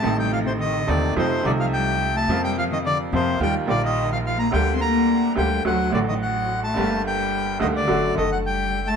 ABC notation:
X:1
M:4/4
L:1/16
Q:1/4=107
K:Gm
V:1 name="Bandoneon"
a g f c e2 d2 c2 d f g3 a- | a g f e d2 c2 g2 d e2 f f b | g3/2 c'/2 b4 g2 ^f2 d e f3 a- | a2 g4 e d3 e ^f g3 a |]
V:2 name="Cello" clef=bass
A, G, F, C, E,2 D,2 C,2 D, F, G,3 A,- | A, G, F, E, D,2 C,2 G,2 D, E,2 F, F, B, | G,3/2 C/2 B,4 G,2 ^F,2 D, E, F,3 A,- | A,2 G,4 E, D,3 E, ^F, G,3 A, |]
V:3 name="Upright piano" clef=bass
[A,,,A,,C,E,A,E]6 [E,,,E,,C,E,A,E]2 [F,,C,F,A,E]2 [C,,C,F,A,E]6 | [F,,C,F,B,F]6 [F,,C,F,B,F]2 [E,,E,G,B,F]2 [B,,,B,,E,G,B,F]6 | [D,,D,G,B,G]6 [D,,D,G,B,G]2 [D,,D,^F,A,^F]2 [A,,,A,,D,F,A,F]6 | [G,,,G,,D,G,B,G]6 [D,,D,G,B,G]2 [^F,,D,^F,A,^F]2 [D,A,A]6 |]
V:4 name="Upright bass" clef=bass
A,,,6 E,,2 F,,2 C,,6 | F,,6 F,,2 E,,2 B,,,6 | D,,6 D,,2 D,,2 A,,,6 | G,,,6 D,,2 ^F,,,2 F,,,6 |]